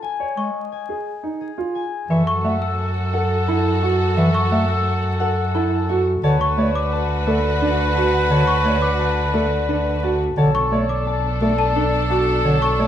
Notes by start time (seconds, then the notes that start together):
0.02 G#5
0.20 C#5
0.37 G#3 D#5 C#6
0.72 G#5
0.89 G#4
1.23 D#4
1.41 G#4
1.58 F4
1.75 G#5
2.10 F#2 E3 F#4 A4 E5 C#6
2.27 C#6
2.44 A3 E5 F#5
2.62 E6
2.79 C#6
3.13 A4 F#5
3.48 E4 A4
3.82 F#4 C#6
4.17 E3 E5 C#6
4.34 C#6
4.51 A3 E5 F#5
4.69 E6
4.86 C#6
5.20 A4 F#5
5.54 E4 A4
5.89 F#4 C#6
6.23 D2 D3 F#4 B4 C#5 A5
6.41 C#6
6.57 A3 C#5 D5
6.75 D6
6.93 A5
7.27 A3 A4 D5
7.61 D4 A4
7.95 F#4 A5
8.30 D3 C#5 A5
8.47 C#6
8.65 A3 C#5 D5
8.82 D6
8.99 A5
9.33 A3 A4 D5
9.68 D4 A4
10.03 F#4 A5
10.37 B1 D3 D4 A4 C#5 A5
10.55 C#6
10.72 A3 C#5 D5
10.89 D6
11.07 A5
11.41 A3 A4 D5
11.58 A5
11.76 D4 A4
12.10 F#4 A5
12.45 D3 C#5 A5
12.62 C#6
12.79 A3 C#5 D5